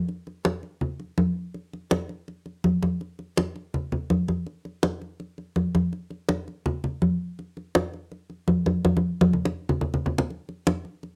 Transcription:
0.09 high conga soft
0.27 high conga soft
0.45 high conga loud
0.63 high conga soft
0.81 high conga soft
0.81 low conga medium
1.00 high conga soft
1.18 high conga medium
1.54 high conga soft
1.73 high conga soft
1.91 high conga loud
2.09 high conga soft
2.28 high conga soft
2.46 high conga soft
2.64 high conga medium
2.83 high conga medium
3.01 high conga soft
3.19 high conga soft
3.37 high conga loud
3.56 high conga soft
3.74 high conga soft
3.74 low conga medium
3.92 high conga soft
3.92 low conga medium
4.10 high conga medium
4.28 high conga medium
4.46 high conga soft
4.65 high conga soft
4.83 high conga loud
5.02 high conga soft
5.20 high conga soft
5.38 high conga soft
5.56 high conga medium
5.75 high conga medium
5.93 high conga soft
6.10 high conga soft
6.29 high conga loud
6.48 high conga soft
6.66 high conga soft
6.66 low conga medium
6.84 high conga soft
6.84 low conga medium
7.02 high conga medium
7.39 high conga soft
7.57 high conga soft
7.75 high conga loud
7.94 high conga soft
8.12 high conga soft
8.30 high conga soft
8.48 high conga medium
8.66 high conga medium
8.85 high conga loud
8.97 high conga medium
9.21 high conga loud
9.33 low conga medium
9.45 high conga medium
9.69 low conga medium
9.81 low conga medium
9.94 low conga medium
10.06 low conga medium
10.18 low conga medium
10.30 high conga soft
10.49 high conga soft
10.67 high conga loud
10.85 high conga soft
11.03 high conga soft

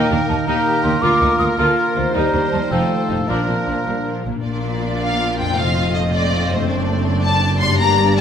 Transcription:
0.00 0.95 D#3 medium
0.00 0.44 A#3 medium
0.00 0.88 A#3 soft
0.00 1.97 A#3 medium
0.00 0.44 D#4 medium
0.00 1.00 D#4 soft
0.00 1.01 D#4 soft
0.00 0.44 A#4 soft
0.00 0.46 A#4 medium
0.00 0.98 A#4 soft
0.00 2.10 A#4 medium
0.00 0.28 G5 medium
0.10 0.18 D#2 soft
0.10 0.17 A#3 soft
0.10 0.18 D4 soft
0.29 0.36 D#2 soft
0.29 0.37 D#2 soft
0.29 0.36 A#3 soft
0.29 0.36 D#4 soft
0.29 0.35 A5 medium
0.46 0.54 D#2 medium
0.46 0.55 D#2 medium
0.46 0.65 A#3 medium
0.46 1.02 A#3 medium
0.46 0.65 D#4 medium
0.46 1.04 D#4 medium
0.46 1.02 G4 medium
0.46 1.02 A#4 medium
0.46 0.83 A#5 medium
0.83 0.92 D#2 soft
0.83 2.07 D3 medium
0.83 0.92 A#3 soft
0.83 0.92 D#4 soft
0.83 1.03 C6 medium
0.90 2.00 A#3 soft
0.94 2.12 F4 soft
0.99 1.10 D2 medium
0.99 1.19 A#3 medium
0.99 1.20 F4 medium
0.99 1.57 F4 soft
0.99 1.97 F4 soft
0.99 2.71 A#4 soft
0.99 1.57 A#4 medium
0.99 1.38 D6 medium
1.03 1.58 A#3 medium
1.03 1.58 A#4 medium
1.21 1.28 D2 soft
1.21 1.28 A#3 soft
1.21 1.29 D#4 soft
1.39 1.47 D2 soft
1.39 1.48 D2 soft
1.39 1.47 A#3 soft
1.39 1.47 F4 soft
1.39 1.45 D#6 medium
1.58 1.66 D2 medium
1.58 1.76 A#3 medium
1.58 2.16 A#3 medium
1.58 2.16 F4 medium
1.58 1.76 F4 medium
1.58 1.78 A4 medium
1.58 2.13 A#4 medium
1.58 1.89 F6 medium
1.78 1.96 A#4 medium
1.95 2.03 D2 soft
1.95 2.04 D2 soft
1.95 2.64 D#3 soft
1.95 2.03 A#3 soft
1.95 2.03 F4 soft
1.95 3.28 C5 medium
2.01 2.66 A#3 soft
2.06 2.61 D#4 soft
2.10 2.32 G3 medium
2.10 2.70 G3 soft
2.10 2.32 D#4 medium
2.10 3.26 D#4 soft
2.10 2.71 G4 soft
2.10 2.72 A#4 soft
2.10 2.49 A#5 medium
2.15 2.22 D#2 medium
2.15 2.23 D#2 medium
2.15 2.73 G3 soft
2.15 2.54 D#4 soft
2.15 2.70 A#4 soft
2.33 2.41 D#2 soft
2.33 2.41 G3 soft
2.33 2.41 D4 soft
2.52 2.60 D#2 soft
2.52 6.43 F3 soft
2.52 2.60 G3 soft
2.52 2.60 D#4 soft
2.52 2.58 A5 medium
2.58 3.24 A3 soft
2.63 3.26 D#4 soft
2.67 2.89 F3 medium
2.67 2.89 D#4 soft
2.67 3.30 D#4 soft
2.67 3.23 F4 soft
2.67 3.31 A4 soft
2.67 3.11 G5 medium
2.71 2.79 F1 medium
2.71 2.79 F2 soft
2.71 3.13 F3 soft
2.71 3.28 A3 soft
2.71 3.29 A4 soft
3.09 3.17 F1 soft
3.09 3.17 F2 soft
3.09 4.25 A#2 soft
3.09 3.17 F3 soft
3.09 3.17 D#4 soft
3.09 3.29 F5 medium
3.15 4.30 A#3 soft
3.19 4.35 D4 soft
3.24 6.68 F4 soft
3.28 3.37 A#1 soft
3.28 3.37 A#2 soft
3.28 3.46 F3 soft
3.28 4.24 F3 soft
3.28 4.26 A#3 soft
3.28 4.26 D4 soft
3.28 3.47 D4 soft
3.28 4.26 D4 soft
3.28 4.14 A#4 soft
3.28 4.26 A#4 soft
3.28 3.86 D5 soft
3.47 3.56 A#1 soft
3.47 3.56 A#2 soft
3.47 3.55 F3 soft
3.47 3.55 C4 soft
3.66 3.75 A#1 soft
3.66 3.75 A#2 soft
3.66 3.74 F3 soft
3.66 3.74 D4 soft
3.86 3.95 A#1 soft
3.86 3.94 A#2 soft
3.86 3.94 G3 medium
4.05 4.25 F3 soft
4.25 4.34 A#1 soft
4.25 4.33 A#2 soft
4.25 5.50 A#2 medium
4.25 4.43 A#3 soft
4.31 5.52 A#3 soft
4.36 5.55 D4 soft
4.40 5.57 A#4 soft
4.40 5.53 D5 medium
4.44 5.54 A#1 soft
4.44 5.54 A#2 soft
4.44 5.53 A#3 medium
4.44 5.53 D4 medium
4.44 6.65 F4 medium
5.02 5.37 F5 medium
5.39 6.61 F2 medium
5.39 5.57 G5 medium
5.44 6.53 A3 soft
5.48 6.66 D#4 soft
5.53 6.69 F2 medium
5.53 7.76 C4 medium
5.53 6.63 C5 soft
5.53 5.95 F5 medium
5.57 6.69 F1 medium
5.57 7.76 A3 medium
5.57 6.65 D#5 medium
5.95 6.02 D#5 medium
6.13 6.50 D5 medium
6.50 7.72 F#2 medium
6.50 6.69 C5 medium
6.55 7.74 A3 medium
6.59 7.69 D4 medium
6.64 7.79 C5 soft
6.68 7.78 F#1 medium
6.68 7.78 F#2 medium
6.68 8.21 D4 medium
6.68 8.21 D5 medium
7.24 7.58 A5 medium
7.60 8.21 G2 medium
7.60 7.79 C6 medium
7.66 8.21 G3 medium
7.70 8.21 D4 medium
7.75 8.21 D5 medium
7.75 8.16 A#5 loud
7.79 8.21 G1 medium
7.79 8.21 G2 medium
7.79 8.21 G3 medium
7.79 8.21 A#3 medium
8.17 8.21 A5 loud

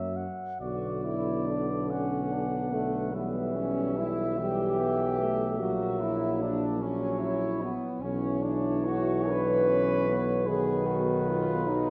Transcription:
0.00 0.26 F#2 soft
0.00 0.26 F#3 soft
0.00 0.28 A#3 soft
0.00 0.18 E5 soft
0.16 0.60 F#5 soft
0.60 5.62 B1 soft
0.60 3.10 D3 soft
0.60 3.15 B3 soft
0.60 1.02 F#4 medium
0.60 1.92 D5 soft
1.04 1.47 E4 medium
1.49 1.91 D4 medium
1.89 2.32 C#4 medium
1.89 3.14 F#5 soft
2.32 2.73 D4 medium
2.73 3.14 A3 medium
3.13 4.37 E3 soft
3.13 4.39 G3 soft
3.13 3.56 B3 soft
3.13 6.65 E5 soft
3.55 3.97 C#4 medium
3.97 4.39 E4 medium
4.38 5.56 E3 medium
4.38 4.79 G3 soft
4.38 5.59 G4 medium
4.79 5.18 B3 soft
5.20 5.61 A3 medium
5.59 7.74 A#1 soft
5.59 6.63 F#3 medium
5.59 6.82 A#3 medium
5.59 5.99 F#4 medium
6.01 6.41 E4 medium
6.42 6.81 D4 medium
6.80 7.72 F#3 medium
6.80 7.74 C#4 soft
6.80 7.21 C#4 medium
6.80 7.73 C#5 soft
7.20 7.59 E4 medium
7.62 8.02 B3 medium
8.00 11.90 B1 medium
8.00 10.50 E3 medium
8.00 8.43 C#4 medium
8.00 9.31 E4 medium
8.00 10.48 C#5 medium
8.43 8.86 D4 medium
8.85 9.29 F#4 medium
9.29 9.70 D4 soft
9.29 10.29 B4 loud
9.69 10.07 C#4 medium
10.08 10.47 B3 medium
10.46 11.69 D#3 medium
10.46 11.64 B3 medium
10.46 10.86 G#4 medium
10.46 11.90 B4 medium
10.86 11.27 F#4 medium
11.28 11.67 F4 medium
11.67 11.90 F#3 medium
11.67 11.90 D#4 soft
11.67 11.90 D#4 medium

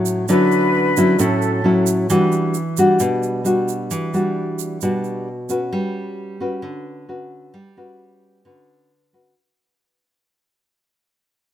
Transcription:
0.00 0.26 A2 medium
0.00 0.25 F#3 medium
0.00 0.25 C#4 medium
0.00 0.25 E4 medium
0.06 shaker medium
0.28 1.17 D3 medium
0.28 0.93 F#3 medium
0.28 0.93 C#4 medium
0.28 0.93 E4 medium
0.28 1.15 B4 loud
0.28 shaker medium
0.52 shaker soft
0.97 1.16 F#3 medium
0.97 1.16 C#4 medium
0.97 1.16 E4 medium
0.97 shaker medium
1.18 2.08 A2 medium
1.18 1.61 F#3 medium
1.18 1.61 C#4 medium
1.18 1.62 E4 medium
1.18 1.86 A4 medium
1.18 shaker medium
1.42 shaker soft
1.64 2.08 F#3 medium
1.64 2.08 C#4 medium
1.64 2.08 E4 medium
1.86 shaker medium
2.10 2.98 E3 medium
2.10 2.55 G3 medium
2.10 2.55 D4 medium
2.10 2.55 F#4 medium
2.10 shaker medium
2.32 shaker soft
2.54 shaker soft
2.77 3.42 G3 medium
2.77 3.43 D4 medium
2.77 3.43 F#4 medium
2.77 shaker medium
2.99 3.89 B2 medium
2.99 shaker medium
3.23 shaker soft
3.44 4.10 G3 medium
3.44 4.10 D4 medium
3.44 4.10 F#4 medium
3.44 shaker medium
3.68 shaker medium
3.91 4.80 E3 medium
3.91 shaker medium
4.14 4.78 G3 medium
4.14 4.79 D4 medium
4.14 4.79 F#4 medium
4.14 shaker soft
4.59 shaker medium
4.81 5.71 B2 medium
4.81 5.27 G3 medium
4.81 5.28 D4 medium
4.81 5.28 F#4 medium
4.81 shaker medium
5.04 shaker soft
5.49 6.37 C#4 medium
5.49 6.37 F#4 medium
5.49 6.38 B4 medium
5.49 shaker medium
5.72 6.61 G3 medium
6.40 7.05 C#4 medium
6.40 7.05 F#4 medium
6.40 7.06 B4 medium
6.62 7.52 D3 medium
7.09 7.54 C#4 medium
7.09 7.54 F#4 soft
7.09 7.54 B4 medium
7.54 8.43 G3 medium
7.77 8.42 C#4 medium
7.77 8.42 F#4 medium
7.77 8.42 B4 medium
8.45 9.34 D3 medium
8.45 8.91 C#4 soft
8.45 8.91 F#4 soft
8.45 8.91 B4 medium
9.13 9.32 C#4 medium
9.13 9.33 F#4 soft
9.13 9.33 B4 medium

